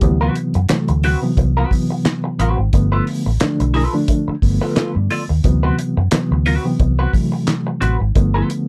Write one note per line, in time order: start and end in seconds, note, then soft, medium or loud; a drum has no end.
0.00 0.27 D2 loud
0.00 0.58 C3 medium
0.00 0.58 E3 loud
0.00 0.09 F3 medium
0.00 0.58 B3 loud
0.00 0.20 E4 medium
0.00 0.20 G4 medium
0.00 muted clean electric guitar stroke soft
0.00 kick loud
0.00 closed hi-hat medium
0.09 0.61 F#3 medium
0.21 0.35 C4 medium
0.21 0.35 F#4 medium
0.21 0.36 B4 medium
0.35 muted clean electric guitar stroke soft
0.35 closed hi-hat medium
0.54 0.66 F#2 loud
0.54 muted clean electric guitar stroke medium
0.54 closed hi-hat soft
0.69 1.11 C3 medium
0.69 1.11 E3 medium
0.69 1.11 F#3 medium
0.69 1.11 A3 loud
0.69 muted clean electric guitar stroke soft
0.69 muted fingered electric bass stroke soft
0.69 snare loud
0.69 clap loud
0.69 closed hi-hat medium
0.88 1.15 D2 medium
0.88 muted clean electric guitar stroke medium
0.88 closed hi-hat medium
1.03 1.18 C4 medium
1.03 1.19 F#4 loud
1.03 1.19 B4 medium
1.03 open hi-hat medium
1.22 1.62 C3 loud
1.22 1.62 E3 medium
1.22 1.62 F#3 medium
1.22 1.63 B3 loud
1.22 muted clean electric guitar stroke medium
1.37 1.63 C2 medium
1.37 muted clean electric guitar stroke soft
1.37 kick loud
1.37 closed hi-hat medium
1.57 1.71 C4 medium
1.57 1.72 F#4 medium
1.57 1.72 B4 medium
1.71 2.54 C3 medium
1.71 2.55 E3 medium
1.71 2.55 F#3 medium
1.71 2.55 B3 medium
1.71 muted clean electric guitar stroke soft
1.71 kick medium
1.71 open hi-hat medium
1.91 muted clean electric guitar stroke soft
2.05 snare loud
2.05 clap medium
2.05 closed hi-hat medium
2.24 muted clean electric guitar stroke medium
2.40 2.54 A1 loud
2.40 2.61 C4 medium
2.40 2.58 F#4 medium
2.40 2.57 B4 medium
2.40 closed hi-hat medium
2.58 2.70 G#1 medium
2.58 muted clean electric guitar stroke medium
2.73 2.99 G1 loud
2.73 3.29 D3 loud
2.73 3.29 F3 medium
2.73 3.29 A3 medium
2.73 3.29 B3 loud
2.73 muted clean electric guitar stroke soft
2.73 kick loud
2.73 closed hi-hat medium
2.92 3.04 F4 medium
2.92 3.04 A4 medium
2.92 3.04 B4 medium
3.07 open hi-hat medium
3.26 3.38 A1 medium
3.26 muted clean electric guitar stroke soft
3.40 3.82 D3 loud
3.40 3.83 F3 medium
3.40 3.83 A3 medium
3.40 3.83 D4 loud
3.40 muted clean electric guitar stroke soft
3.40 muted fingered electric bass stroke soft
3.40 snare loud
3.40 clap medium
3.40 closed hi-hat medium
3.60 3.86 B1 medium
3.60 muted clean electric guitar stroke soft
3.60 closed hi-hat medium
3.74 3.96 F4 medium
3.74 3.94 A4 medium
3.74 3.93 B4 medium
3.74 open hi-hat medium
3.93 4.34 D3 medium
3.93 4.34 F3 medium
3.93 4.34 A3 medium
3.93 4.34 D4 loud
3.93 muted clean electric guitar stroke soft
4.08 muted clean electric guitar stroke soft
4.08 kick medium
4.08 closed hi-hat loud
4.28 muted fingered electric bass stroke soft
4.28 muted clean electric guitar stroke soft
4.42 4.57 G1 medium
4.42 5.25 D3 medium
4.42 5.26 F3 medium
4.42 5.26 A3 medium
4.42 5.26 B3 medium
4.42 kick medium
4.42 open hi-hat medium
4.61 4.74 F4 medium
4.61 4.74 A4 medium
4.61 4.73 B4 medium
4.76 4.91 F4 medium
4.76 4.91 A4 medium
4.76 4.91 B4 medium
4.76 snare loud
4.76 clap medium
4.76 closed hi-hat loud
4.95 5.07 G2 loud
4.95 muted clean electric guitar stroke medium
5.10 5.22 F4 medium
5.10 5.22 A4 medium
5.10 5.23 D5 medium
5.10 open hi-hat medium
5.29 5.41 D#2 medium
5.29 muted clean electric guitar stroke medium
5.44 5.70 D2 medium
5.44 6.00 C3 loud
5.44 6.00 E3 medium
5.44 6.00 F#3 medium
5.44 6.00 B3 loud
5.44 muted clean electric guitar stroke soft
5.44 kick loud
5.44 closed hi-hat medium
5.63 5.76 C4 medium
5.63 5.75 F#4 medium
5.63 5.75 B4 medium
5.78 muted clean electric guitar stroke soft
5.78 closed hi-hat medium
5.97 6.09 F#2 medium
5.97 muted clean electric guitar stroke medium
6.11 6.54 C3 medium
6.11 6.54 E3 medium
6.11 6.54 F#3 medium
6.11 6.54 B3 loud
6.11 muted fingered electric bass stroke soft
6.11 muted clean electric guitar stroke soft
6.11 snare loud
6.11 clap loud
6.11 closed hi-hat loud
6.31 6.57 D2 medium
6.31 muted clean electric guitar stroke soft
6.46 6.68 C4 medium
6.46 6.65 F#4 medium
6.46 6.64 B4 medium
6.46 open hi-hat medium
6.64 7.04 C3 medium
6.64 7.05 E3 medium
6.64 7.05 F#3 medium
6.64 7.05 B3 loud
6.64 muted clean electric guitar stroke soft
6.80 7.06 C2 medium
6.80 muted clean electric guitar stroke soft
6.80 kick medium
6.80 closed hi-hat medium
6.99 7.11 C4 medium
6.99 7.11 F#4 medium
6.99 7.10 B4 medium
7.13 7.97 C3 medium
7.13 7.97 E3 medium
7.13 7.97 F#3 medium
7.13 7.97 A3 medium
7.13 muted clean electric guitar stroke soft
7.13 kick loud
7.13 open hi-hat medium
7.32 muted clean electric guitar stroke soft
7.47 snare loud
7.47 clap medium
7.47 closed hi-hat medium
7.67 muted clean electric guitar stroke medium
7.81 7.96 A1 medium
7.81 7.96 C4 medium
7.81 7.96 F#4 medium
7.81 7.97 B4 medium
7.81 closed hi-hat medium
8.00 8.12 G#1 medium
8.00 muted clean electric guitar stroke medium
8.15 8.41 G1 medium
8.15 8.68 D3 loud
8.15 8.68 F3 loud
8.15 8.68 A3 medium
8.15 8.68 B3 loud
8.15 muted clean electric guitar stroke soft
8.15 kick loud
8.15 closed hi-hat medium
8.34 8.48 F4 medium
8.34 8.49 A4 medium
8.34 8.50 B4 medium
8.49 muted clean electric guitar stroke medium
8.49 closed hi-hat medium